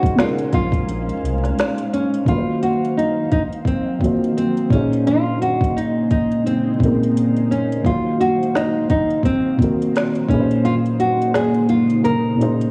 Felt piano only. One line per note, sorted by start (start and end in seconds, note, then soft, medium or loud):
0.00 0.15 C#3 medium
0.00 0.17 G#3 medium
0.00 0.19 D#4 medium
0.00 0.20 F4 medium
0.00 2.28 C5 medium
0.15 1.10 C#3 medium
0.15 1.11 G#3 medium
0.15 1.11 D#4 medium
0.20 1.12 F4 medium
0.20 1.13 A#4 medium
2.25 3.19 D#3 medium
2.25 3.20 A#3 medium
2.25 3.21 F5 medium
2.30 3.22 F#3 medium
2.30 2.36 B4 medium
2.38 3.26 C5 medium
3.99 4.68 D#3 medium
3.99 4.68 A#3 medium
3.99 4.70 F4 medium
4.04 4.71 F#4 medium
4.04 4.72 C5 medium
4.69 5.82 A#2 medium
4.69 5.83 A#3 medium
4.69 5.84 C#4 medium
4.73 5.84 D#4 medium
4.73 5.85 G#4 medium
4.73 5.86 C5 medium
6.78 7.48 A#2 medium
6.78 7.48 A#3 medium
6.78 6.88 C4 soft
6.82 7.50 D#4 medium
6.82 7.50 G#4 medium
6.82 7.51 A#4 medium
6.87 7.52 C#3 medium
7.83 8.77 D#3 medium
7.83 8.78 A#3 medium
7.83 8.79 F5 medium
7.88 8.80 F#3 medium
7.88 8.80 C5 medium
9.57 10.27 D#3 medium
9.57 10.27 A#3 medium
9.57 10.28 F4 medium
9.62 10.29 F#4 medium
9.62 10.30 A#4 medium
10.27 11.40 A#2 medium
10.27 11.41 A#3 medium
10.27 11.42 C#4 medium
10.31 11.43 D#4 medium
10.31 11.43 G#4 medium
10.31 10.39 B4 medium
10.40 11.47 C5 medium
12.36 12.71 A#2 medium
12.36 12.71 A#3 medium
12.36 12.71 C#4 medium
12.36 12.71 D#4 medium
12.41 12.71 G#4 medium
12.41 12.71 C5 medium